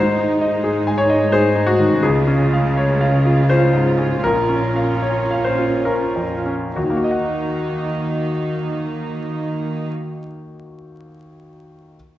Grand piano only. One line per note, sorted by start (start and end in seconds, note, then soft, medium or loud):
0.00 1.98 G#2 soft
0.00 0.94 C5 medium
0.18 0.55 D#4 soft
0.41 0.77 D#5 soft
0.64 1.00 G#4 soft
0.87 1.23 G#5 soft
0.98 1.29 C#5 medium
1.10 1.46 D#5 soft
1.32 1.69 G#4 soft
1.32 1.64 C5 medium
1.55 1.93 D#4 soft
1.66 2.00 F#4 medium
1.79 2.02 D#3 soft
2.03 4.20 C#2 soft
2.03 2.73 G#4 soft
2.27 2.67 C#4 soft
2.53 2.92 F5 soft
2.77 3.16 C#5 soft
3.01 3.39 F5 soft
3.25 3.64 F4 soft
3.49 3.88 C#4 soft
3.49 4.19 C5 medium
3.73 4.13 G#2 soft
3.98 4.23 C#4 soft
4.23 6.72 A#1 soft
4.23 5.40 A#4 medium
4.49 4.92 C#4 soft
4.76 5.19 F5 soft
5.02 5.46 C#5 soft
5.31 5.75 F5 soft
5.44 5.83 C5 soft
5.58 6.04 F4 soft
5.85 6.34 C#4 soft
5.85 6.27 A#4 soft
6.16 6.64 F2 soft
6.46 6.76 C#4 soft
6.76 9.87 D#2 soft
6.76 6.95 F#4 soft
6.83 9.94 D#3 soft
6.90 10.01 A#3 soft
6.97 10.08 F#4 soft
7.04 10.16 D#5 soft
7.11 10.22 F#5 soft